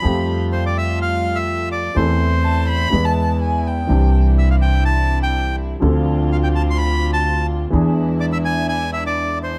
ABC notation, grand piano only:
X:1
M:4/4
L:1/8
Q:1/4=125
K:Ephr
V:1 name="Grand piano"
[F,,F,A,CG]8 | [E,,E,A,CA]4 [E,,E,^G,B,B]4 | [C,,C,E,CDG]8 | [D,,D,F,CDA]8 |
[E,,E,B,D^G]8 |]